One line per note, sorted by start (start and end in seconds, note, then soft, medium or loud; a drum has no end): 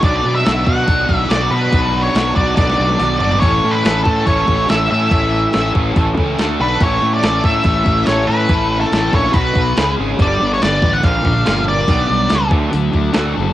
0.00 0.20 B1 medium
0.00 0.44 B2 medium
0.00 0.44 F#3 medium
0.00 0.45 B3 loud
0.00 0.46 D4 loud
0.00 0.46 F#4 loud
0.00 0.35 D5 medium
0.00 kick loud
0.00 open hi-hat soft
0.25 0.42 B2 medium
0.35 0.68 E5 loud
0.44 0.63 B1 medium
0.44 0.66 B2 medium
0.44 0.67 F#3 medium
0.44 0.67 B3 medium
0.44 0.68 D4 medium
0.44 0.69 F#4 medium
0.44 snare loud
0.44 open hi-hat soft
0.65 0.86 B2 medium
0.65 0.84 B2 medium
0.65 0.86 F#3 medium
0.65 0.87 B3 medium
0.65 0.87 D4 medium
0.65 0.88 F#4 medium
0.65 1.16 F#5 loud
0.65 kick medium
0.87 1.05 B1 medium
0.87 1.29 B2 medium
0.87 1.29 F#3 medium
0.87 1.31 B3 medium
0.87 1.30 D4 medium
0.87 1.31 F#4 medium
0.87 kick loud
0.87 open hi-hat medium
1.09 1.26 B1 medium
1.09 kick medium
1.16 1.32 E5 loud
1.29 1.47 B1 medium
1.29 1.50 B2 medium
1.29 1.50 F#3 medium
1.29 1.52 B3 medium
1.29 1.51 D4 medium
1.29 1.52 F#4 medium
1.29 1.50 D5 medium
1.29 snare loud
1.29 open hi-hat soft
1.50 1.72 B2 medium
1.50 1.68 B2 medium
1.50 1.72 F#3 medium
1.50 1.73 B3 medium
1.50 1.74 D4 medium
1.50 1.73 F#4 medium
1.50 2.01 B4 medium
1.73 2.07 B1 medium
1.73 2.15 B2 medium
1.73 2.16 F#3 medium
1.73 2.17 B3 medium
1.73 2.16 D4 loud
1.73 2.17 F#4 loud
1.73 kick loud
1.73 open hi-hat soft
2.02 2.35 C#5 medium
2.15 2.32 B1 medium
2.15 2.36 B2 medium
2.15 2.36 F#3 medium
2.15 2.38 B3 medium
2.15 2.37 D4 medium
2.15 2.38 F#4 loud
2.15 snare loud
2.15 open hi-hat soft
2.35 2.54 B1 medium
2.35 2.56 B2 medium
2.35 2.56 F#3 medium
2.35 2.57 B3 medium
2.35 2.57 D4 medium
2.35 2.55 D5 medium
2.35 kick medium
2.40 2.58 F#4 medium
2.56 2.75 B1 medium
2.56 2.98 B2 medium
2.56 2.99 F#3 medium
2.56 3.00 B3 medium
2.56 3.00 D4 medium
2.56 3.01 F#4 medium
2.56 3.17 D5 medium
2.56 kick loud
2.56 snare medium
2.56 open hi-hat medium
2.70 snare medium
2.79 2.97 B1 medium
2.89 high tom medium
2.99 3.17 B1 medium
2.99 3.19 B2 medium
2.99 3.20 F#3 medium
2.99 3.22 B3 medium
2.99 3.21 D4 medium
2.99 3.22 F#4 medium
2.99 open hi-hat soft
2.99 mid tom medium
3.19 3.39 G1 medium
3.19 3.41 B2 medium
3.19 3.41 F#3 medium
3.19 3.43 B3 medium
3.19 3.42 D4 medium
3.19 3.42 F#4 medium
3.19 3.40 D5 medium
3.19 floor tom medium
3.32 floor tom medium
3.40 3.59 A1 medium
3.40 3.83 A2 medium
3.40 3.83 E3 medium
3.40 3.85 A3 loud
3.40 3.74 C#5 medium
3.40 kick loud
3.40 open hi-hat soft
3.44 3.85 C#4 medium
3.44 3.85 E4 loud
3.44 3.87 A4 loud
3.64 3.81 A2 medium
3.71 4.02 B4 medium
3.85 4.02 A1 medium
3.85 4.05 A2 medium
3.85 4.06 E3 medium
3.85 4.07 A3 medium
3.85 4.07 C#4 medium
3.85 4.07 E4 medium
3.85 4.09 A4 medium
3.85 snare loud
3.85 open hi-hat soft
4.04 4.23 A2 medium
4.04 4.27 A2 medium
4.04 4.28 E3 medium
4.04 4.29 A3 medium
4.04 4.28 C#4 medium
4.04 4.25 A4 medium
4.04 kick medium
4.08 4.28 E4 medium
4.08 4.30 A4 medium
4.26 4.45 A1 medium
4.26 4.69 A2 medium
4.26 4.70 E3 medium
4.26 4.71 A3 medium
4.26 4.71 C#4 medium
4.26 4.71 E4 medium
4.26 4.72 A4 medium
4.26 4.70 C#5 medium
4.26 kick medium
4.26 open hi-hat soft
4.48 4.65 A1 medium
4.48 kick medium
4.69 4.87 A1 medium
4.69 4.90 A2 medium
4.69 4.91 E3 medium
4.69 4.91 A3 medium
4.69 4.92 C#4 medium
4.69 4.92 E4 medium
4.69 4.93 A4 medium
4.69 4.90 E5 medium
4.69 snare loud
4.69 open hi-hat soft
4.91 5.10 A2 medium
4.91 5.08 A2 medium
4.91 5.10 E3 medium
4.91 5.11 A3 medium
4.91 5.11 C#4 medium
4.91 5.12 E4 medium
4.91 5.13 A4 medium
4.91 5.72 E5 medium
5.11 5.46 A1 medium
5.11 5.52 A2 loud
5.11 5.52 E3 loud
5.11 5.53 A3 loud
5.11 5.54 C#4 loud
5.11 5.54 E4 loud
5.11 5.56 A4 loud
5.11 kick loud
5.11 open hi-hat soft
5.53 5.72 A1 medium
5.53 5.73 A2 medium
5.53 5.74 E3 medium
5.53 5.75 A3 medium
5.53 5.75 C#4 medium
5.53 5.75 E4 medium
5.53 5.77 A4 medium
5.53 snare loud
5.53 open hi-hat medium
5.74 5.92 A1 medium
5.74 5.96 A2 medium
5.74 5.96 E3 medium
5.74 5.97 A3 medium
5.74 5.97 C#4 medium
5.74 5.98 E4 medium
5.74 5.98 A4 medium
5.74 kick medium
5.96 6.13 A1 medium
5.96 6.38 A2 medium
5.96 6.38 E3 medium
5.96 6.39 A3 medium
5.96 6.38 C#4 medium
5.96 6.39 E4 medium
5.96 6.40 A4 medium
5.96 kick loud
5.96 open hi-hat soft
6.17 6.35 C#2 medium
6.17 kick medium
6.38 6.56 D2 medium
6.38 6.57 D3 medium
6.38 6.59 A3 medium
6.38 6.59 D4 medium
6.38 6.60 A4 medium
6.38 snare medium
6.38 open hi-hat soft
6.59 6.77 B1 medium
6.59 6.79 D3 medium
6.59 6.82 A3 medium
6.59 6.80 D4 medium
6.59 6.84 A4 medium
6.59 6.80 B4 medium
6.80 6.98 A1 loud
6.80 7.23 A2 loud
6.80 7.24 E3 loud
6.80 7.24 A3 medium
6.80 7.24 C#4 medium
6.80 7.25 E4 loud
6.80 7.26 A4 loud
6.80 7.12 C#5 medium
6.80 kick loud
6.80 open hi-hat soft
7.02 7.19 A2 medium
7.14 7.44 D5 loud
7.23 7.40 A1 medium
7.23 7.44 A2 medium
7.23 7.44 E3 medium
7.23 7.45 A3 medium
7.23 7.45 C#4 medium
7.23 7.47 E4 medium
7.23 7.46 A4 medium
7.23 snare loud
7.23 open hi-hat soft
7.44 7.61 A2 medium
7.44 7.65 A2 medium
7.44 7.65 E3 medium
7.44 7.66 A3 medium
7.44 7.66 C#4 medium
7.44 7.67 E4 medium
7.44 7.67 A4 medium
7.44 8.04 E5 loud
7.44 kick medium
7.64 7.82 A1 medium
7.64 8.06 A2 medium
7.64 8.07 E3 medium
7.64 8.07 A3 medium
7.64 8.08 C#4 medium
7.64 8.09 E4 loud
7.64 kick loud
7.64 open hi-hat soft
7.69 8.09 A4 medium
7.86 8.04 A1 medium
7.86 kick medium
8.06 8.25 A1 medium
8.06 8.26 A2 medium
8.06 8.26 E3 medium
8.06 8.27 A3 medium
8.06 8.28 C#4 medium
8.06 8.28 E4 medium
8.06 8.27 C#5 medium
8.06 snare medium
8.06 open hi-hat soft
8.10 8.29 A4 medium
8.27 8.48 A2 medium
8.27 8.46 A2 medium
8.27 8.48 E3 medium
8.27 8.49 A3 medium
8.27 8.49 C#4 medium
8.27 8.49 E4 medium
8.27 8.50 A4 medium
8.27 8.77 B4 medium
8.49 8.84 A1 medium
8.49 8.91 A2 loud
8.49 8.91 E3 medium
8.49 8.92 A3 medium
8.49 8.92 C#4 medium
8.49 8.93 E4 loud
8.49 8.93 A4 loud
8.49 kick loud
8.49 open hi-hat soft
8.81 9.14 A4 medium
8.81 snare soft
8.92 9.09 A1 medium
8.92 9.11 A2 medium
8.92 9.11 E3 medium
8.92 9.12 A3 medium
8.92 9.12 C#4 medium
8.92 9.13 E4 medium
8.92 9.13 A4 medium
8.92 snare loud
8.92 open hi-hat medium
9.12 9.30 A#1 medium
9.12 9.32 A2 medium
9.12 9.33 E3 medium
9.12 9.33 A3 medium
9.12 9.33 C#4 medium
9.12 9.34 E4 medium
9.12 9.34 A4 medium
9.12 9.33 C#5 medium
9.12 kick medium
9.33 9.51 B1 medium
9.33 9.75 B2 medium
9.33 9.75 F#3 medium
9.33 9.76 B3 medium
9.33 9.76 F#4 medium
9.33 9.93 B4 medium
9.33 kick loud
9.33 open hi-hat soft
9.56 9.73 B1 medium
9.56 kick medium
9.77 9.94 C#2 medium
9.77 9.97 C#3 medium
9.77 9.98 G#3 medium
9.77 9.98 C#4 medium
9.77 9.99 G#4 medium
9.77 snare loud
9.77 open hi-hat soft
9.98 10.16 G#1 medium
9.98 10.18 C#3 medium
9.98 10.18 G#3 medium
9.98 10.18 C#4 medium
9.98 10.19 G#4 medium
10.19 10.37 G1 medium
10.19 10.39 G2 medium
10.19 10.40 D3 loud
10.19 10.40 G3 loud
10.19 10.53 D5 medium
10.19 kick loud
10.19 open hi-hat medium
10.41 10.59 G1 medium
10.41 10.60 G2 medium
10.41 10.60 D3 medium
10.41 11.25 D4 medium
10.54 10.62 C#5 medium
10.62 10.80 G1 medium
10.62 10.81 G2 medium
10.62 10.81 D3 medium
10.62 11.04 B4 medium
10.62 10.94 D5 medium
10.62 snare loud
10.62 open hi-hat soft
10.82 11.00 A1 medium
10.82 11.02 G2 medium
10.82 11.03 D3 medium
10.82 11.04 B3 medium
10.82 kick medium
10.93 11.03 F#5 medium
11.04 11.21 A#1 medium
11.04 11.23 A#2 medium
11.04 11.24 D3 medium
11.04 11.25 F3 medium
11.04 11.63 F5 medium
11.04 kick loud
11.04 open hi-hat soft
11.24 11.42 A#1 medium
11.24 11.44 A#2 medium
11.24 11.44 D3 medium
11.24 12.09 D4 medium
11.24 kick medium
11.45 11.82 G1 medium
11.45 11.65 A#2 medium
11.45 11.66 D3 medium
11.45 11.66 F3 medium
11.45 11.88 F4 medium
11.45 snare loud
11.45 open hi-hat medium
11.67 11.86 A#2 medium
11.67 11.86 D3 medium
11.67 11.89 A#4 medium
11.67 12.48 D5 medium
11.88 12.05 B1 medium
11.88 12.08 B2 medium
11.88 12.08 G3 loud
11.88 12.09 B3 loud
11.88 kick medium
11.88 open hi-hat medium
12.09 12.27 B1 medium
12.09 12.28 B2 medium
12.09 12.28 G3 medium
12.09 12.94 D4 medium
12.29 12.49 C#2 medium
12.29 12.49 B2 medium
12.29 12.49 G3 medium
12.29 12.52 B4 medium
12.29 snare loud
12.29 open hi-hat medium
12.50 12.69 D2 medium
12.50 12.70 D3 medium
12.50 12.71 F#3 medium
12.50 12.71 A3 loud
12.50 kick loud
12.71 12.91 D2 medium
12.71 12.91 D3 medium
12.71 12.91 F#3 medium
12.71 open hi-hat medium
12.93 13.11 D2 medium
12.93 13.11 D3 medium
12.93 13.12 F#3 medium
12.93 13.53 D4 medium
12.93 kick medium
13.13 13.33 D2 medium
13.13 13.33 D3 medium
13.13 13.34 F#3 loud
13.13 13.34 A3 medium
13.13 13.53 F#4 medium
13.13 snare loud
13.13 open hi-hat soft
13.35 13.53 F#1 medium
13.35 13.53 D3 medium
13.35 13.53 F#3 medium
13.35 13.53 A4 medium